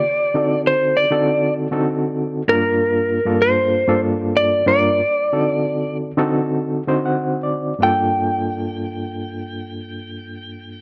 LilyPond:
<<
  \new Staff \with { instrumentName = "Electric slide guitar" } { \time 4/4 \key d \minor \tempo 4 = 92 d''4 c''8 d''4 r4. | bes'4. c''4 r8 d''8 d''8~ | d''4. r2 r8 | g''1 | }
  \new Staff \with { instrumentName = "Reed electric piano" } { \time 4/4 \key d \minor << { r1 | r1 | r2. fis''8 d''8 | r1 | } \\ { r8 <d c' ees' fis' a'>4~ <d c' ees' fis' a'>16 <d c' ees' fis' a'>4 <d c' ees' fis' a'>4~ <d c' ees' fis' a'>16 | <g, bes d' f' bes'>4~ <g, bes d' f' bes'>16 <g, bes d' f' a'>4 <g, bes d' f' a'>4~ <g, bes d' f' a'>16 <g, bes d' f' bes'>8 | r8 <d c' ees' fis' a'>4~ <d c' ees' fis' a'>16 <d c' ees' fis' a'>4 <d c' ees' fis' c''>4~ <d c' ees' fis' c''>16 | <g, bes d' f' a'>1 | } >> }
>>